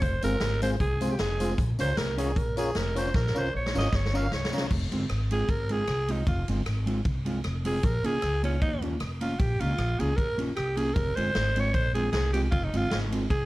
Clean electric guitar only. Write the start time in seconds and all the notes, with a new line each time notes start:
0.22 G#3 C4 F4
0.62 G#3 C4 F4
1.01 G#3 C4 F4
1.40 G#3 C4 F4
1.79 C#4 F4 A#4
2.17 C#4 F4 A#4
2.56 C#4 F4 A#4
2.96 C#4 F4 A#4
3.36 C#4 F4 A#4
3.75 C#4 F4 A#4
3.93 muted clean electric guitar stroke
4.13 C#4 F4 A#4
4.53 C#4 F4 A#4
4.91 G#3 C4 F4
5.31 G#3 C4 F4
5.70 G#3 C4 F4
6.08 G#3 C4 F4
6.48 G#3 C4 F4
6.86 G#3 C4 F4
7.06 muted clean electric guitar stroke
7.25 G#3 C4 F4
7.64 G#3 C4 F4
8.04 A#3 C#4 F4
8.43 A#3 C#4 F4
8.82 A#3 C#4 F4
9.21 A#3 C#4 F4
9.60 A#3 C#4 F4
9.99 A#3 C#4 F4
10.37 A#3 C#4 F4
10.77 A#3 C#4 F4
11.17 G#3 C4 F4
11.56 G#3 C4 F4
11.95 G#3 C4 F4
12.33 G#3 C4 F4
12.73 G#3 C4 F4
13.12 G#3 C4 F4
13.31 muted clean electric guitar stroke